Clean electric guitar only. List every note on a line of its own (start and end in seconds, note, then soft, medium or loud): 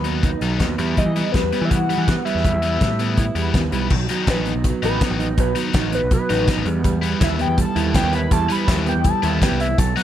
0.00 0.40 F#3 medium
0.05 0.60 B3 medium
0.24 0.79 D#4 medium
0.42 0.78 F#3 medium
0.60 1.52 B3 medium
0.79 0.98 G3 medium
0.98 1.14 G3 medium
1.15 1.32 G3 medium
1.33 1.88 G3 medium
1.52 2.07 B3 medium
1.70 2.63 E4 medium
1.89 2.24 G3 medium
2.08 2.98 B3 medium
2.25 2.43 G3 medium
2.44 2.62 G3 medium
2.63 2.79 G3 medium
2.81 3.35 G3 medium
2.99 3.53 B3 medium
3.19 3.92 E4 medium
3.36 3.71 G3 medium
3.54 3.91 B3 medium
3.73 3.91 G3 medium
3.91 4.08 F#3 medium
4.10 4.63 F#3 medium
4.28 4.82 D#4 medium
4.46 5.01 B3 medium
4.65 5.36 F#3 medium
4.83 5.18 D#4 medium
5.01 5.91 B3 medium
5.19 5.73 D#4 medium
5.37 5.54 F#3 medium
5.56 6.10 F#3 medium
5.74 6.28 D#4 medium
5.92 6.47 B3 medium
6.11 6.65 F#3 medium
6.30 6.66 D#4 medium
6.47 7.38 B3 medium
6.65 6.83 G3 medium
6.84 7.00 G3 medium
7.01 7.56 G3 medium
7.20 7.74 E4 medium
7.38 7.94 B3 medium
7.57 8.29 G3 medium
7.75 8.11 E4 medium
7.94 8.85 B3 medium
8.12 8.67 E4 medium
8.31 8.49 G3 medium
8.50 9.03 G3 medium
8.68 9.22 E4 medium
8.86 9.42 B3 medium
9.05 9.77 G3 medium
9.23 9.58 E4 medium
9.42 10.03 B3 medium
9.59 9.78 E4 medium
9.78 9.96 F#3 medium
9.96 10.03 F#3 medium